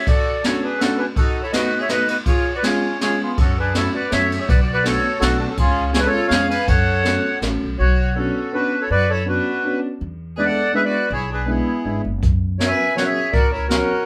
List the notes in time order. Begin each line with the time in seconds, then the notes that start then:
0.02 F#4
0.07 A4 D5, kick, ride
0.43 A3 C#4 D4 F#4 A4 C#5, snare, ride
0.63 D4 G#4 B4
0.78 A3 C#4 D4 F#4 A4, snare, ride
0.98 D4 G#4 B4
1.15 D#4 F#4 A4, kick, ride
1.43 E4 A4 C#5
1.52 A3 B3 D#4 F#4 B4 D#5, snare, ride
1.79 G#4 C#5 E5
1.87 A3 B3 D#4 F#4 B4 D#5, snare, ride
2.07 F#4 B4 D#5, ride
2.24 F4 G#4 C#5, kick, ride
2.54 F#4 B4 D5
2.62 G#3 C#4 F4 G#4 C#5, snare, ride
3.00 G#3 C#4 F4 G#4 C#5, snare, ride
3.21 B3 F4 G#4
3.38 F#2 C#4 F#4 A4, kick, ride
3.59 D4 G#4 B4
3.74 A3 C#4 E4 F#4 A4 C#5, snare, ride
3.94 F#4 B4 D5
4.10 F#2 A3 C#4 E4 F#4 A4 C#5 E5, snare, ride
4.32 ride
4.38 G#4 C#5 E5
4.46 B1 F#4 B4 D5, kick, ride
4.61 F#4 D5
4.71 F#4 B4 D5
4.83 A3 B3 D4 F#4 C#5, snare, ride
4.87 A4
5.20 B1 A3 B3 D4 F#4 A4, snare, ride
5.38 A3 D4 F#4
5.49 C#4 A4
5.57 C#2 C#4 F4 G#4, kick, ride
5.92 G#3 C#4 F4 G#4 C#5, snare, ride
5.99 D4 B4
6.05 F4 A4 C#5
6.28 F2 G#3 C#4 F4 G#4 C#5 F5, snare, ride
6.33 G#4
6.50 B4 F5 G#5, ride
6.68 F#2 A4 C#5 F#5, kick, ride
7.03 A3 C#4 F#4 A4, snare, ride
7.41 A1 A3 C#4 F#4 A4, snare, ride
7.63 B1
7.78 B1 F#4 C#5
8.15 B3 C#4 D4 F#4 A4
8.52 B3 C#4 D4 F#4 B4
8.81 E4 A4 C#5
8.90 F#2 F#4 B4 D5
9.10 E4 A4 C#5
9.25 B3 C#4 D4 F#4 B4
9.30 D4
9.63 B3 C#4 D4 F#4
10.01 E2
10.36 G#3 B3 D4 E4 G#4 B4 D5
10.46 A4 D5 F#5
10.73 G#3 B3 D4 E4 G#4 B4 E5
10.84 F#4 B4 D5
11.11 B1 E4 G#4 C#5
11.31 D4 G#4 B4
11.46 G#3 B3 D4 E4 G#4
11.85 G#1 G#3 B3 D4 E4
12.04 F#1
12.23 F#2, kick, closed hi-hat
12.58 F#3 A#3 C#4 F#4 A#4 C#5 E5, snare, closed hi-hat
12.67 B4 E5 G#5
12.95 F#3 A#3 C#4 F#4 A#4 C#5 F#5, snare, closed hi-hat
13.05 G#4 C#5 E5
13.32 C#2 F#4 A#4 D5, kick, closed hi-hat
13.52 E4 A#4 C#5
13.68 F#3 A#3 C#4 F#4 A#4, snare, closed hi-hat